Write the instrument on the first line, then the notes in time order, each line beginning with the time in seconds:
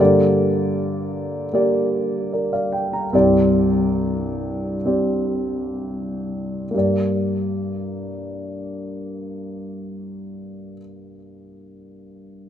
grand piano
0.00 G2 D3 A#3 G4 D5
1.53 A#3 G4 D5
2.33 A#4 D5
2.53 D5 F5
2.72 G5
2.93 G5 A#5
3.13 C2 G2 C4 G4 D5
4.85 C4 G4 D5
6.71 G2 A#3 G4
6.78 D5